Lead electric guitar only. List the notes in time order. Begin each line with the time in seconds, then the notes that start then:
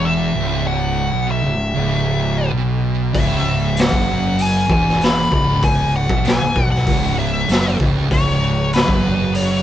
0.05 E5
0.67 F#5
1.31 E5
3.15 E5
3.80 F#5
4.42 G#5
4.72 G#5
5.04 B5
5.34 B5
5.64 G#5
5.96 F#5
6.27 G#5
6.71 F#5
7.19 E5
8.12 C#5
8.74 B4
9.36 C#5